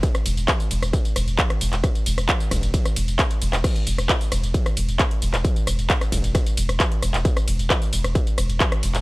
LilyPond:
<<
  \new Staff \with { instrumentName = "Sub bass" } { \clef bass \time 4/4 \key c \lydian \tempo 4 = 133 r8 e,,16 e,,16 r8 e,,16 e,,16 r8 e,,16 e,,16 r8 e,,16 e,,16 | r8 e,,16 e,,16 r8 e,,16 e,,16 r8 e,,16 e,,16 r8 e,,16 e,,16 | r8 e,,16 e,,16 r8 e,,16 e,,16 r8 e,,16 e,,16 r8 e,,16 e,,16 | r8 e,,16 e,,16 r8 e,,16 e,,16 r8 e,,16 e,,16 r8 e,,16 e,,16 |
r8 e,,16 e,,16 r8 e,,16 e,,16 r8 e,,16 e,,16 r8 e,,16 e,,16 | }
  \new DrumStaff \with { instrumentName = "Drums" } \drummode { \time 4/4 <hh bd cymr tamb>16 <hh ss tamb>16 <hho cymr tamb>16 <hh tamb>16 <hc hh bd cymr ss tamb>16 <hho tamb>16 <hho cymr tamb>16 <hh ss tamb>16 <hh bd cymr tamb>16 <hh tamb>16 <hho cymr ss tamb>16 <hh tamb>16 <hc hh bd cymr tamb>16 <hh ss>16 <hho cymr tamb>16 <hc hh tamb>16 | <hh bd cymr ss tamb>16 <hh tamb>16 <hho cymr tamb>16 <hh ss tamb>16 <hc hh bd cymr tamb>16 <hho tamb>16 <hho bd cymr ss tamb>16 <hh tamb>16 <hh bd cymr tamb>16 <hh ss tamb>16 <hho cymr tamb>16 <hh tamb>16 <hc hh bd cymr ss tamb>16 <hh tamb>16 <hho cymr tamb>16 <hc hh ss tamb>16 | <cymc hh bd cymr ss tamb>16 <hh tamb>16 <hho cymr tamb>16 <hh ss tamb>16 <hc hh bd cymr tamb>16 <hho tamb>16 <hho cymr ss tamb>16 <hh tamb>16 <hh bd cymr tamb>16 <hh ss tamb>16 <hho cymr tamb>16 <hh tamb>16 <hc hh bd cymr ss tamb>16 hh16 <hho cymr tamb>16 <hc hh ss tamb>16 | <hh bd cymr tamb>16 <hh tamb>16 <hho cymr ss tamb>16 <hh tamb>16 <hc hh bd cymr tamb>16 <hh ss tamb>16 <hho bd cymr tamb>16 <hh tamb>16 <hh bd cymr ss tamb>16 <hh tamb>16 <hho cymr tamb>16 <hh ss tamb>16 <hc hh bd cymr tamb>16 hh16 <hho cymr ss tamb>16 <hc hh tamb>16 |
<hh bd cymr tamb>16 <hh ss tamb>16 <hho cymr tamb>16 <hh tamb>16 <hc hh bd cymr ss tamb>16 <hho tamb>16 <hho cymr tamb>16 <hh ss tamb>16 <hh bd cymr tamb>16 <hh tamb>16 <hho cymr ss tamb>16 <hh tamb>16 <hc hh bd cymr tamb>16 <hh ss>16 <hho cymr tamb>16 <hc hh tamb>16 | }
>>